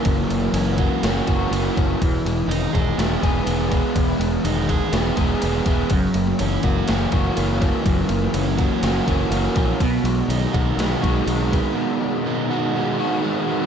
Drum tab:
RD |x-x-x-x-x-x-x-x-|x-x-x-x-x-x-x-x-|x-x-x-x-x-x-x-x-|x-x-x-x-x-x-x-x-|
SD |---o----o-------|--------o-------|--------o-------|---o----o-------|
BD |o-----o---o---o-|o-----o---o---o-|o-----o---o---o-|o-----o---o---o-|

RD |x-x-x-x-x-x-x-x-|x-x-x-x-x-x-x-x-|----------------|
SD |---o----o-------|--------o-------|----------------|
BD |o-----o---o---o-|o-----o---o---o-|----------------|